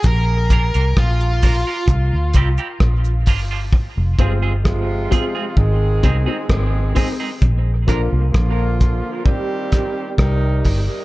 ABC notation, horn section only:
X:1
M:4/4
L:1/16
Q:1/4=65
K:Fdor
V:1 name="Horn section" clef=bass
z16 | z2 [C,F,A,F]2 [C,F,A,F]4 [E,A,CA]4 [E,A,CA]3 z | z2 [D,F,B,F]2 [D,F,B,F]4 [E,G,CG]4 [C,E,G,E]3 z |]